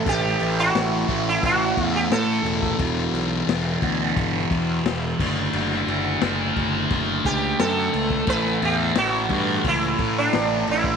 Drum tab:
CC |x-x-x-x-x-x-x-x-|x-x-x-x-x-x-x-x-|x-x-x-x-x-x-x-x-|x-x-x-x-x-x-x-x-|
SD |----o-------o--o|-o--o-------o---|-o--o-------o---|-o--o-------o---|
BD |o-----o-o-o----o|o-----o-o-o---o-|------o-o-o----o|o-----o-o-o----o|